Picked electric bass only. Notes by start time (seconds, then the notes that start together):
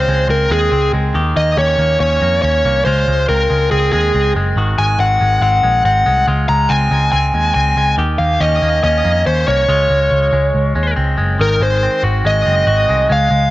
0.08 C#2
0.28 C#2
0.50 D#2
0.72 C#2
0.93 C#2
1.15 D#2
1.36 D#2
1.57 D#2
1.78 D#2
2.01 D#2
2.22 F2
2.44 D#2
2.65 C2
2.86 C#2
3.08 C#2
3.29 C#2
3.51 C#2
3.72 C#2
3.93 D#2
4.15 C#2
4.35 F#1
4.56 G#1
4.79 G#1
4.99 G#1
5.21 G#1
5.41 G#1
5.63 A#1
5.84 G#1
6.07 C2
6.28 C#2
6.49 C#2
6.70 C#2
6.91 C#2
7.13 C#2
7.34 D#2
7.56 C#2
7.76 C#2
7.98 D#2
8.19 D#2
8.41 D#2
8.62 D#2
8.84 D#2
9.05 F2
9.27 D#2
9.48 C2
9.69 C#2
9.90 C#2
10.12 C#2
10.33 C#2
10.55 C#2
10.75 D#2
10.98 C#2
11.18 F#1
11.40 G#1
11.60 G#1
12.03 G#1
12.25 G#1
12.46 F#1
12.67 G#1
12.89 C2
13.10 C#2
13.31 C#2